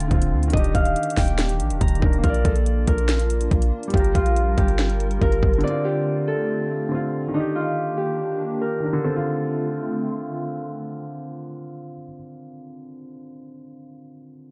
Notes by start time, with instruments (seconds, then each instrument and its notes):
Already playing: 808-style bass D1, grand piano D3 C4 F4, analog synth pad D3 A3 C4 F4, harp G5 A5
0.00 closed hi-hat
0.08 808-style bass D1, grand piano D3 C4, kick, closed hi-hat
0.14 grand piano F4
0.22 closed hi-hat
0.32 808-style bass D2
0.43 closed hi-hat
0.48 grand piano D#3, closed hi-hat
0.53 808-style bass D#1, analog synth pad D#3 A#3 D4 G4, grand piano D4, harp D#5, kick, closed hi-hat
0.59 grand piano G4
0.64 closed hi-hat
0.75 808-style bass D#1, harp F5, kick, closed hi-hat
0.85 closed hi-hat
0.96 closed hi-hat
1.03 closed hi-hat
1.10 closed hi-hat
1.17 808-style bass D#1, harp G5, kick, snare, open hi-hat
1.28 closed hi-hat
1.39 snare, closed hi-hat
1.49 closed hi-hat
1.60 808-style bass A#1, closed hi-hat
1.70 808-style bass D#1, closed hi-hat
1.81 808-style bass D#1, harp A#5, kick, closed hi-hat
1.88 closed hi-hat
1.95 closed hi-hat
1.99 808-style bass D#1, grand piano D#3 D4, kick
2.05 grand piano A#4
2.13 closed hi-hat
2.18 grand piano A#3
2.23 808-style bass A#1, analog synth pad A#3 D4 F4, grand piano F4, harp A#4, kick, closed hi-hat
2.30 grand piano D5
2.34 closed hi-hat
2.45 808-style bass A#1, harp A4, kick, closed hi-hat
2.56 closed hi-hat
2.66 closed hi-hat
2.87 808-style bass A#1, harp A#4, kick, closed hi-hat
2.98 closed hi-hat
3.09 snare, closed hi-hat
3.19 closed hi-hat
3.30 closed hi-hat
3.41 closed hi-hat
3.51 808-style bass A#1, kick, closed hi-hat
3.62 closed hi-hat
3.83 closed hi-hat
3.88 grand piano G3, closed hi-hat
3.93 808-style bass G1, analog synth pad G3 A#4, grand piano F4, harp G4, kick, closed hi-hat
3.99 grand piano A#4
4.04 closed hi-hat
4.15 808-style bass A#1, harp F4, kick, closed hi-hat
4.26 closed hi-hat
4.36 closed hi-hat
4.58 808-style bass G1, harp G4, kick, closed hi-hat
4.68 closed hi-hat
4.79 snare, closed hi-hat
4.90 closed hi-hat
5.00 closed hi-hat
5.11 closed hi-hat
5.18 808-style bass G1, grand piano G3 F4, harp A#4, kick, closed hi-hat
5.24 grand piano A#4
5.32 closed hi-hat
5.43 808-style bass G1, kick
5.53 closed hi-hat
5.58 grand piano D3, closed hi-hat
5.64 analog synth pad D3 A3 C4, grand piano C4, harp D5, closed hi-hat
5.70 grand piano F4
5.85 harp G4
6.28 harp A4
6.89 grand piano D3 C4
6.95 grand piano F4
7.28 grand piano D#3
7.34 analog synth pad D#3 A#3 D4 G4, grand piano D4, harp D#4
7.40 grand piano G4
7.55 harp F4
7.97 harp G4
8.61 harp A#4
8.80 grand piano D#3 D4
8.86 grand piano A#4
8.93 grand piano D3
9.04 analog synth pad D3 A3 C4 F4, grand piano C4, harp A4
9.16 grand piano F4